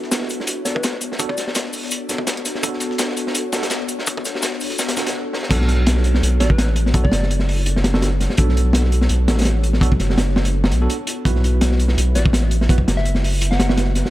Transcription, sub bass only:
0, 0, Header, 1, 2, 480
1, 0, Start_track
1, 0, Key_signature, 2, "minor"
1, 0, Tempo, 359281
1, 1597, Time_signature, 4, 2, 24, 8
1, 18838, End_track
2, 0, Start_track
2, 0, Title_t, "Sub bass"
2, 0, Program_c, 0, 38
2, 7356, Note_on_c, 0, 35, 101
2, 8299, Note_off_c, 0, 35, 0
2, 8317, Note_on_c, 0, 35, 94
2, 8558, Note_on_c, 0, 33, 84
2, 8578, Note_off_c, 0, 35, 0
2, 9260, Note_off_c, 0, 33, 0
2, 9273, Note_on_c, 0, 35, 102
2, 9493, Note_off_c, 0, 35, 0
2, 9514, Note_on_c, 0, 30, 78
2, 11066, Note_off_c, 0, 30, 0
2, 11198, Note_on_c, 0, 35, 99
2, 12140, Note_off_c, 0, 35, 0
2, 12156, Note_on_c, 0, 35, 93
2, 12396, Note_on_c, 0, 33, 84
2, 12416, Note_off_c, 0, 35, 0
2, 13099, Note_off_c, 0, 33, 0
2, 13108, Note_on_c, 0, 35, 97
2, 13330, Note_off_c, 0, 35, 0
2, 13358, Note_on_c, 0, 30, 83
2, 14313, Note_on_c, 0, 35, 94
2, 14333, Note_off_c, 0, 30, 0
2, 14533, Note_off_c, 0, 35, 0
2, 15035, Note_on_c, 0, 35, 98
2, 15978, Note_off_c, 0, 35, 0
2, 15998, Note_on_c, 0, 35, 96
2, 16239, Note_on_c, 0, 33, 86
2, 16259, Note_off_c, 0, 35, 0
2, 16940, Note_off_c, 0, 33, 0
2, 16956, Note_on_c, 0, 35, 101
2, 17174, Note_off_c, 0, 35, 0
2, 17196, Note_on_c, 0, 30, 79
2, 18747, Note_off_c, 0, 30, 0
2, 18838, End_track
0, 0, End_of_file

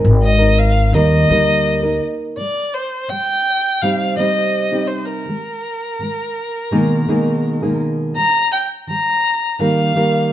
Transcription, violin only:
0, 0, Header, 1, 2, 480
1, 0, Start_track
1, 0, Tempo, 722022
1, 1588, Time_signature, 4, 2, 24, 8
1, 6865, End_track
2, 0, Start_track
2, 0, Title_t, "Violin"
2, 0, Program_c, 0, 40
2, 153, Note_on_c, 0, 75, 92
2, 392, Note_on_c, 0, 77, 94
2, 402, Note_off_c, 0, 75, 0
2, 630, Note_off_c, 0, 77, 0
2, 643, Note_on_c, 0, 75, 102
2, 1329, Note_off_c, 0, 75, 0
2, 1581, Note_on_c, 0, 74, 94
2, 1821, Note_on_c, 0, 72, 76
2, 1831, Note_off_c, 0, 74, 0
2, 2059, Note_on_c, 0, 79, 96
2, 2069, Note_off_c, 0, 72, 0
2, 2540, Note_on_c, 0, 77, 82
2, 2550, Note_off_c, 0, 79, 0
2, 2765, Note_off_c, 0, 77, 0
2, 2769, Note_on_c, 0, 75, 82
2, 3241, Note_on_c, 0, 72, 66
2, 3251, Note_off_c, 0, 75, 0
2, 3361, Note_on_c, 0, 70, 75
2, 3371, Note_off_c, 0, 72, 0
2, 5174, Note_off_c, 0, 70, 0
2, 5424, Note_on_c, 0, 82, 106
2, 5649, Note_off_c, 0, 82, 0
2, 5667, Note_on_c, 0, 79, 75
2, 5775, Note_off_c, 0, 79, 0
2, 5909, Note_on_c, 0, 82, 91
2, 6361, Note_off_c, 0, 82, 0
2, 6399, Note_on_c, 0, 77, 91
2, 6865, Note_off_c, 0, 77, 0
2, 6865, End_track
0, 0, End_of_file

